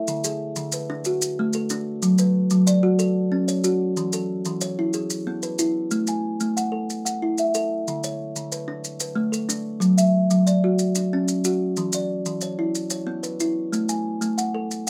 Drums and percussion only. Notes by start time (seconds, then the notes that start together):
0.08 maracas
0.24 maracas
0.56 maracas
0.72 maracas
1.05 maracas
1.22 maracas
1.53 maracas
1.70 maracas
2.02 maracas
2.18 maracas
2.50 maracas
2.67 maracas
2.99 maracas
3.48 maracas
3.64 maracas
3.97 maracas
4.13 maracas
4.45 maracas
4.61 maracas
4.93 maracas
5.10 maracas
5.43 maracas
5.59 maracas
5.91 maracas
6.07 maracas
6.40 maracas
6.57 maracas
6.90 maracas
7.06 maracas
7.38 maracas
7.54 maracas
7.88 maracas
8.04 maracas
8.36 maracas
8.52 maracas
8.84 maracas
9.00 maracas
9.33 maracas
9.49 maracas
9.82 maracas
9.98 maracas
10.31 maracas
10.47 maracas
10.79 maracas
10.95 maracas
11.28 maracas
11.44 maracas
11.77 maracas
11.93 maracas
12.26 maracas
12.41 maracas
12.75 maracas
12.90 maracas
13.23 maracas
13.40 maracas
13.73 maracas
13.89 maracas
14.22 maracas
14.38 maracas
14.71 maracas